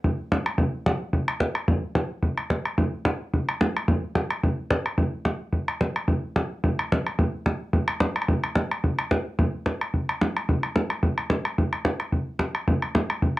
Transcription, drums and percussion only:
0.04 bodhran medium
0.32 bodhran medium
0.46 bodhran medium
0.58 bodhran medium
0.86 bodhran medium
1.13 bodhran medium
1.28 bodhran medium
1.40 bodhran medium
1.55 bodhran medium
1.68 bodhran loud
1.95 bodhran medium
2.23 bodhran medium
2.38 bodhran medium
2.50 bodhran medium
2.65 bodhran medium
2.78 bodhran medium
3.05 bodhran medium
3.34 bodhran medium
3.49 bodhran medium
3.61 bodhran medium
3.77 bodhran medium
3.88 bodhran medium
4.15 bodhran medium
4.30 bodhran medium
4.44 bodhran medium
4.70 bodhran medium
4.86 bodhran medium
4.98 bodhran medium
5.25 bodhran medium
5.53 bodhran medium
5.68 bodhran medium
5.81 bodhran medium
5.96 bodhran medium
6.08 bodhran medium
6.36 bodhran medium
6.64 bodhran medium
6.79 bodhran medium
6.92 bodhran medium
7.07 bodhran medium
7.19 bodhran medium
7.46 bodhran medium
7.73 bodhran medium
7.88 bodhran medium
8.00 bodhran medium
8.16 bodhran medium
8.22 bodhran medium
8.28 bodhran medium
8.44 bodhran medium
8.55 bodhran medium
8.71 bodhran medium
8.84 bodhran medium
8.99 bodhran medium
9.11 bodhran loud
9.39 bodhran medium
9.66 bodhran medium
9.81 bodhran medium
9.94 bodhran medium
10.09 bodhran medium
10.21 bodhran medium
10.37 bodhran medium
10.49 bodhran medium
10.63 bodhran medium
10.76 bodhran medium
10.90 bodhran medium
11.03 bodhran medium
11.18 bodhran medium
11.30 bodhran medium
11.45 bodhran medium
11.58 bodhran medium
11.73 bodhran medium
11.85 bodhran medium
12.00 bodhran medium
12.12 bodhran medium
12.39 bodhran medium
12.55 bodhran medium
12.68 bodhran medium
12.82 bodhran medium
12.95 bodhran medium
13.10 bodhran medium
13.22 bodhran medium

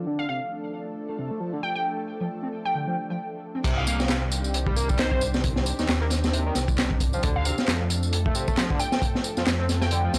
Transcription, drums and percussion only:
3.64 kick loud
3.64 closed hi-hat medium
3.64 crash medium
3.64 tambourine soft
3.87 closed hi-hat medium
3.87 tambourine medium
4.00 snare soft
4.00 tambourine soft
4.08 snare loud
4.08 clap loud
4.08 closed hi-hat medium
4.08 tambourine soft
4.32 closed hi-hat medium
4.32 tambourine medium
4.44 tambourine soft
4.54 closed hi-hat medium
4.54 tambourine soft
4.67 kick medium
4.76 closed hi-hat medium
4.76 tambourine medium
4.89 kick loud
4.89 tambourine soft
4.98 snare loud
4.98 clap loud
4.98 closed hi-hat medium
4.98 tambourine soft
5.11 kick loud
5.21 closed hi-hat medium
5.21 tambourine medium
5.34 snare medium
5.34 tambourine soft
5.44 kick loud
5.44 closed hi-hat loud
5.44 tambourine soft
5.56 snare soft
5.66 closed hi-hat medium
5.66 tambourine medium
5.79 snare soft
5.79 tambourine soft
5.89 snare loud
5.89 clap loud
5.89 closed hi-hat medium
5.89 tambourine soft
6.10 snare soft
6.10 closed hi-hat medium
6.10 tambourine medium
6.24 snare medium
6.24 tambourine soft
6.33 closed hi-hat medium
6.33 tambourine soft
6.55 snare soft
6.55 closed hi-hat medium
6.55 tambourine medium
6.68 kick loud
6.68 tambourine soft
6.78 snare loud
6.78 clap loud
6.78 closed hi-hat medium
6.78 tambourine soft
6.91 kick medium
7.00 kick medium
7.00 closed hi-hat medium
7.00 tambourine medium
7.13 tambourine soft
7.23 kick loud
7.23 closed hi-hat loud
7.23 tambourine soft
7.45 closed hi-hat medium
7.45 tambourine medium
7.58 snare soft
7.58 tambourine soft
7.68 snare loud
7.68 clap loud
7.68 closed hi-hat medium
7.68 tambourine soft
7.90 closed hi-hat medium
7.90 tambourine medium
8.03 tambourine soft
8.13 closed hi-hat medium
8.13 tambourine soft
8.26 kick loud
8.35 closed hi-hat medium
8.35 tambourine medium
8.48 kick loud
8.48 tambourine soft
8.57 snare loud
8.57 clap loud
8.57 closed hi-hat loud
8.57 tambourine soft
8.70 kick loud
8.80 closed hi-hat medium
8.80 tambourine medium
8.92 snare medium
8.92 tambourine soft
9.02 kick loud
9.02 closed hi-hat medium
9.02 tambourine soft
9.15 snare soft
9.24 closed hi-hat medium
9.24 tambourine medium
9.37 snare soft
9.37 tambourine soft
9.47 snare loud
9.47 clap loud
9.47 closed hi-hat medium
9.47 tambourine soft
9.69 snare soft
9.69 closed hi-hat medium
9.69 tambourine medium
9.82 snare medium
9.82 tambourine soft
9.91 closed hi-hat medium
9.91 tambourine soft
10.14 snare soft
10.14 closed hi-hat medium
10.14 tambourine medium

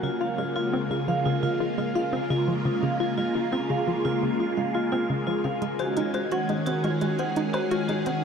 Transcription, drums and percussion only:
5.62 closed hi-hat medium
5.79 closed hi-hat soft
5.97 closed hi-hat medium
6.14 closed hi-hat soft
6.32 closed hi-hat medium
6.49 closed hi-hat soft
6.67 closed hi-hat medium
6.84 closed hi-hat soft
7.01 closed hi-hat medium
7.19 closed hi-hat soft
7.36 closed hi-hat medium
7.54 closed hi-hat soft
7.54 percussion blips medium
7.71 closed hi-hat medium
7.89 closed hi-hat soft
8.06 closed hi-hat medium

